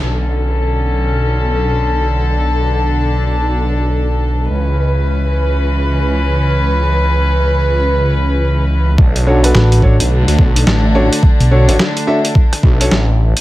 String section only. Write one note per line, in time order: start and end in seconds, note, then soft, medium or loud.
0.02 4.46 D3 medium
0.02 2.24 C#4 medium
0.02 4.46 A4 medium
2.25 4.48 D4 medium
4.49 8.94 E3 medium
4.49 8.94 C#4 medium
4.49 8.94 B4 medium
8.99 13.41 D3 medium
8.99 13.41 A3 medium
8.99 13.41 D4 medium